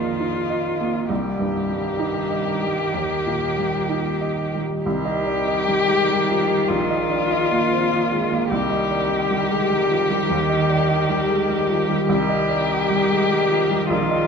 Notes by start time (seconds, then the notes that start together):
Already playing: A#1 F2 D#3 A#3 F4
0.20 D#4
0.50 D#5
0.81 A#3
1.09 C2 D#3 G4
1.39 G2
1.70 G3
1.99 D#4
2.31 D#5
2.62 G3
2.94 D#2
3.26 A#2
3.58 G3
3.89 D#4
4.21 D#5
4.55 G3
4.85 C2 D#3 G4
5.05 D#5
5.26 D5
5.48 D#5
5.67 G3
5.88 G#3
6.08 G3
6.29 F3
6.49 G3
6.68 A#1 F4
6.90 D#5
7.11 D5
7.31 D#5
7.51 A#3
7.72 C4
7.91 A#3
8.12 G#3
8.31 A#3
8.50 C2 D#3 G4
8.70 D#5
8.91 D5
9.10 D#5
9.30 G3
9.50 G#3
9.70 G3
9.90 F3
10.09 G3
10.30 D#2
10.49 D#5
10.69 D5
10.89 D#5
11.09 G3
11.29 G#3
11.49 G3
11.69 F3
11.89 G3
12.09 C2 D#3 G4
12.29 D#5
12.49 D5
12.69 D#5
12.90 G3
13.10 G#3
13.31 G3
13.50 F3
13.71 G3
13.90 A#1 F4
14.11 D#5